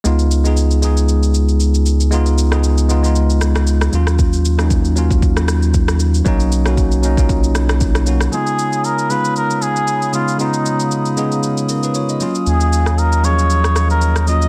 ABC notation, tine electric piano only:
X:1
M:4/4
L:1/16
Q:"Swing 16ths" 1/4=116
K:Dbmix
V:1 name="Tine electric piano"
z16 | z16 | z16 | z16 |
z16 | z8 z2 [DB] [Ec] [Fd] e2 z | z16 |]
V:2 name="Tine electric piano"
[A,CEF]2 z [A,CEA]2 z [A,CEA]6 z4 | [A,CEF]2 z [A,CEA]2 z [A,CEF] [A,CEF]6 z [G,B,DF]2- | [G,B,DF]2 z [G,B,DE]2 z [G,B,DF]6 z4 | [^F,^A,^C^D]2 z [F,A,C^F]2 z [F,A,CD] [F,A,C=F]6 z [^F,A,C^F]2 |
[D,A,CEF]4- [D,A,CEF] z [D,A,CEF]6 z2 [D,A,CEF]2 | [D,A,CEF]4- [D,A,CEF] z [D,A,CEA]3 z4 z [G,B,DF]2- | [G,B,DF]4 z2 [F,G,B,DA]6 z2 [G,B,DF]2 |]